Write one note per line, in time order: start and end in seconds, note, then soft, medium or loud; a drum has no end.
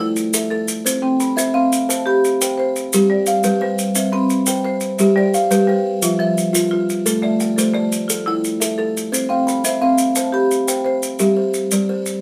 0.00 0.34 E4 medium
0.00 0.33 A4 medium
0.00 0.51 G5 medium
0.16 maracas medium
0.33 0.50 A4 medium
0.33 0.85 E5 medium
0.33 maracas medium
0.50 0.85 A4 medium
0.50 1.03 A4 medium
0.68 maracas medium
0.85 1.20 C4 medium
0.85 1.19 C5 medium
0.85 1.37 C5 medium
0.85 maracas medium
1.02 1.37 C4 medium
1.02 1.54 G5 medium
1.20 1.72 B5 medium
1.20 maracas medium
1.36 1.71 C4 medium
1.36 1.88 C5 medium
1.36 1.88 E5 medium
1.36 maracas medium
1.54 1.88 C4 medium
1.54 2.06 F5 medium
1.72 maracas medium
1.89 2.23 C5 medium
1.89 2.40 A5 medium
1.89 maracas medium
2.06 2.40 G4 medium
2.06 2.58 B5 medium
2.25 maracas medium
2.41 2.58 C5 medium
2.41 2.92 G5 medium
2.41 maracas medium
2.58 2.92 C5 medium
2.58 3.10 C5 medium
2.76 maracas medium
2.93 3.28 G3 medium
2.93 3.45 G4 medium
2.93 maracas medium
3.10 3.44 G3 medium
3.10 3.61 D5 medium
3.26 3.79 F5 medium
3.26 maracas medium
3.43 3.78 G3 medium
3.43 3.96 G4 medium
3.43 3.96 B4 medium
3.43 maracas medium
3.61 3.96 G3 medium
3.61 3.94 C5 medium
3.79 maracas medium
3.95 4.30 C4 medium
3.95 4.46 C5 medium
3.95 4.30 E5 medium
3.95 maracas medium
4.12 4.47 C4 medium
4.12 4.64 B5 medium
4.30 maracas medium
4.46 4.63 C5 medium
4.46 4.98 G5 medium
4.46 maracas medium
4.64 4.99 C5 medium
4.64 5.16 C5 medium
4.80 maracas medium
4.98 5.34 G3 medium
4.98 5.51 G4 medium
4.98 5.33 E5 medium
4.98 maracas medium
5.16 5.50 G3 medium
5.16 5.68 C5 medium
5.16 5.68 D5 medium
5.34 5.85 F5 medium
5.34 maracas medium
5.51 5.85 G3 medium
5.51 6.02 G4 medium
5.51 6.02 B4 medium
5.51 maracas medium
5.67 6.02 G3 medium
5.67 6.20 C5 medium
6.02 6.37 F3 medium
6.02 6.52 F4 medium
6.02 6.37 E5 medium
6.02 maracas medium
6.19 6.54 F3 medium
6.19 6.71 E5 medium
6.38 maracas medium
6.53 6.70 F4 medium
6.53 maracas medium
6.71 7.23 F4 medium
6.71 7.06 F4 medium
6.90 maracas medium
7.06 7.40 A3 medium
7.06 7.57 A4 medium
7.06 7.40 A4 medium
7.06 maracas medium
7.22 7.57 A3 medium
7.22 7.73 D5 medium
7.22 7.74 E5 medium
7.40 7.92 G5 medium
7.40 maracas medium
7.56 7.92 A3 medium
7.56 8.08 A4 medium
7.56 8.09 C5 medium
7.56 maracas medium
7.74 8.09 A3 medium
7.74 8.26 D5 medium
7.92 maracas medium
8.08 8.60 F4 medium
8.08 8.44 A4 medium
8.08 maracas medium
8.26 8.61 E4 medium
8.26 8.79 G5 medium
8.44 maracas soft
8.60 8.77 A4 medium
8.60 9.12 E5 medium
8.60 maracas medium
8.78 9.12 A4 medium
8.78 9.30 A4 medium
8.97 maracas medium
9.12 9.47 C4 medium
9.12 9.64 C5 medium
9.12 9.47 C5 medium
9.12 maracas medium
9.29 9.64 C4 medium
9.29 9.81 F5 medium
9.29 9.81 G5 medium
9.47 9.99 B5 medium
9.47 maracas medium
9.64 9.99 C4 medium
9.64 10.16 C5 medium
9.64 10.16 E5 medium
9.64 maracas medium
9.82 10.16 C4 medium
9.82 10.33 F5 medium
9.98 maracas medium
10.15 10.51 C5 medium
10.15 10.68 A5 medium
10.15 maracas medium
10.32 10.67 G4 medium
10.32 10.85 B5 medium
10.51 maracas medium
10.67 10.85 C5 medium
10.67 11.19 G5 medium
10.67 maracas medium
10.85 11.19 C5 medium
10.85 11.35 C5 medium
11.03 maracas medium
11.19 11.54 G3 medium
11.19 11.72 G4 medium
11.19 11.54 E5 medium
11.19 maracas medium
11.37 11.88 C5 medium
11.54 maracas medium
11.71 12.06 G3 medium
11.71 12.21 D5 medium
11.71 maracas medium
11.89 12.21 C5 medium
12.06 maracas medium